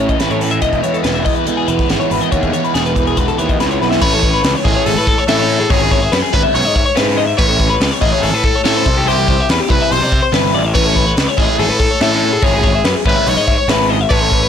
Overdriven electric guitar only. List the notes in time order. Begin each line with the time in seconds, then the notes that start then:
Already playing: A2 E3 E4
0.00 A3 C#4
0.19 E3 A3 C#4 E4
0.61 E3 G#3 B3 E4
0.83 G#3 B3 E4
1.04 E3 G#3 B3 E4
1.25 G#3 B3 E4
1.46 E3 G#3 B3 E4
1.67 G#3 B3 E4
1.89 E3 G#3 B3 E4
2.32 E3 G#3 B3 E4
2.53 G#3 B3 E4
2.74 E3 G#3 B3 E4
2.95 G#3 B3 E4
3.17 E3 G#3 B3 E4
3.38 G#3 B3 E4
3.59 E3 G#3 B3 E4
4.02 E3 A3 C#4 E4
4.65 E3 A3 C#4 E4
5.28 E3 A3 C#4 E4
5.70 C#3 G#3 C#4 E4
6.33 C#3 G#3 C#4 E4
6.96 C#3 G#3 C#4 E4
7.38 E3 A3 C#4 E4
8.01 E3 A3 C#4 E4
8.64 E3 A3 C#4 E4
9.06 E3 G3 C4 E4
9.69 E3 G3 C4 E4
10.32 E3 G3 C4 E4
10.74 E3 A3 C#4 E4
11.37 E3 A3 C#4 E4
12.01 E3 A3 C#4 E4
12.42 C#3 G#3 C#4 E4
13.06 C#3 G#3 C#4 E4
13.68 C#3 G#3 C#4 E4
14.11 A3 C#4 E4 A4